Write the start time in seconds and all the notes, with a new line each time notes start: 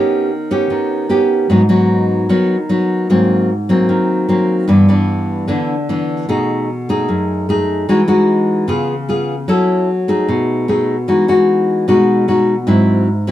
Already playing: D#3 B3 C#4 G4
0.51 B3 C#4 G4
0.70 D#3
1.09 B3 C#4 G4
1.50 G#2 F#3 B3 D#4
1.69 F#3 B3 D#4
2.29 D#3 F#3 B3 D#4
2.69 F#3 B3 D#4
3.10 G#2 F#3 A#3 C4
3.69 F#3 A#3 C4
3.89 D#3
4.29 F#3 A#3 C4
4.68 G2 E3 B3 D4
4.89 E3 B3 D4
5.48 D3 E3 B3 D4
5.89 E3 B3 D4
6.29 B2 A3 D#4 G#4
6.89 A3 D#4 G#4
7.09 F#2
7.49 A3 D#4 G#4
7.89 E3 G#3 D#4 F#4
8.08 G#3 D#4 F#4
8.68 C#3 B3 F4 G#4
9.09 B3 F4 G#4
9.48 F#3 C#4 E4 A4
10.08 A3 D#4 G#4
10.28 B2
10.68 A3 D#4 G#4
11.08 E3 G#3 D#4 F#4
11.28 G#3 D#4 F#4
11.88 B2 G#3 D#4 F#4
12.28 G#3 D#4 F#4
12.67 G#2 F#3 C4 E4
13.27 F#3 C4 E4